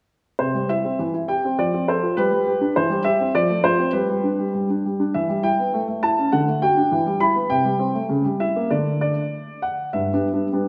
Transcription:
0.39 C3 C5
0.54 G3
0.69 E4 E5
0.84 C4
0.99 E3
1.14 E4
1.28 G4 G5
1.45 C4
1.59 F3 D5
1.74 C4
1.88 A4 C5
2.03 F4
2.17 G3 B4
2.32 G3
2.47 G4
2.61 D4
2.76 E3 C5
2.90 G3
3.04 G4 E5
3.20 C4
3.35 F3 D5
3.50 A3
3.64 F4 C5
3.79 C4
3.93 G3 B4
4.09 G3
4.24 D4
4.39 G3
4.54 G3
4.70 D4
4.85 G3
5.00 D4
5.14 E3 E5
5.29 G3
5.43 E4 G5
5.59 B3
5.74 A3
5.88 A3
6.03 E4 A5
6.19 C#4
6.32 D3 F#5
6.48 A3
6.62 F#4 G5
6.77 D4
6.91 E3
7.06 G3
7.20 E4 B5
7.36 B3
7.50 C3 G5
7.65 G3
7.79 C4
7.94 A3
8.09 C#3
8.24 G3
8.40 E4 E5
8.56 A#3
8.70 D3 A3 D4 D5
9.01 D5
9.62 F#5
9.93 G2 E5
10.13 G3 B3 D4
10.33 G3 B3 D4
10.53 G3 B3 D4

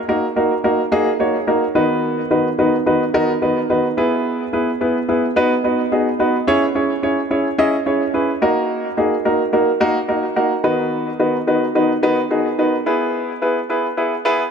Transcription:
0.08 A#3 D#4 F#4 A#4
0.36 A#3 D#4 F#4 A#4
0.64 A#3 D#4 F#4 A#4
0.92 A#3 D#4 F#4 G#4
1.20 A#3 D#4 F#4 C#5
1.47 A#3 D#4 F#4 A#4
1.75 D#3 B3 D#4 F#4 B4
2.31 D#3 B3 D#4 F#4 B4
2.58 D#3 B3 D#4 F#4 B4
2.86 D#3 B3 D#4 F#4 B4
3.14 D#3 B3 D#4 F#4 A#4
3.42 D#3 B3 D#4 F#4 B4
3.70 D#3 B3 D#4 F#4 B4
3.97 B3 E4 G#4 B4
4.53 B3 E4 G#4 B4
4.81 B3 E4 G#4 B4
5.09 B3 E4 G#4 B4
5.36 B3 D#4 F#4 B4
5.64 B3 D#4 F#4 B4
5.92 B3 D#4 F#4 G#4
6.19 B3 D#4 F#4 B4
6.47 C#4 E4 G#4 C#5
6.75 C#4 E4 G#4 C#5
7.03 C#4 E4 G#4 C#5
7.31 C#4 E4 G#4 C#5
7.58 C#4 E4 G#4 D#5
7.86 C#4 E4 G#4 C#5
8.14 C#4 E4 G#4 B4
8.42 A#3 D#4 F#4 A#4
8.97 A#3 D#4 F#4 G#4
9.25 A#3 D#4 F#4 A#4
9.53 A#3 D#4 F#4 A#4
9.80 A#3 D#4 F#4 A#4
10.08 A#3 D#4 F#4 A#4
10.36 A#3 D#4 F#4 A#4 F#5
10.64 D#3 B3 D#4 F#4 B4 B5
11.19 D#3 B3 D#4 F#4 B4
11.47 D#3 B3 D#4 F#4 B4
11.75 D#3 B3 D#4 F#4 B4
12.03 D#3 B3 D#4 F#4 B4
12.30 D#3 B3 D#4 F#4 G#4
12.58 D#3 B3 D#4 F#4 B4
12.86 B3 E4 G#4 B4
13.42 B3 E4 G#4 B4
13.69 B3 E4 G#4 B4
13.97 B3 E4 G#4 B4
14.25 B3 E4 G#4 B4

